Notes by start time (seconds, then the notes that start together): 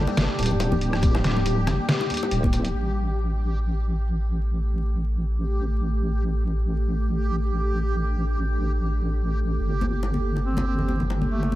Already playing: G3 D4 G4
0.07 high bongo
0.17 G1, snare, closed hi-hat
0.38 D1, closed hi-hat, high bongo, high conga
0.43 closed hi-hat
0.46 closed hi-hat
0.51 low conga
0.60 closed hi-hat, high bongo
0.72 high conga, low conga
0.81 closed hi-hat
0.93 cross-stick, high bongo
1.02 kick, closed hi-hat, high conga
1.15 cross-stick, high bongo
1.24 snare, closed hi-hat
1.37 high conga
1.46 closed hi-hat, high bongo
1.67 G1, cross-stick, closed hi-hat, high bongo, high conga, low conga
1.89 snare, closed hi-hat
2.01 high bongo
2.10 closed hi-hat, high conga
2.14 closed hi-hat
2.17 closed hi-hat
2.23 high bongo
2.31 D1, closed hi-hat
2.43 kick, high conga
2.53 closed hi-hat, high bongo
2.65 closed hi-hat
2.74 A1 A3 E4 G4 A4
6.17 D4
9.60 G1 G3 D4
9.81 high bongo, high conga
10.03 high bongo
10.14 high conga
10.36 high bongo
10.46 C4
10.57 high bongo, high conga
10.67 C4
10.79 low conga
10.88 high bongo, high conga
11.00 low conga
11.10 high bongo
11.22 high conga
11.31 A3
11.43 high bongo
11.52 high conga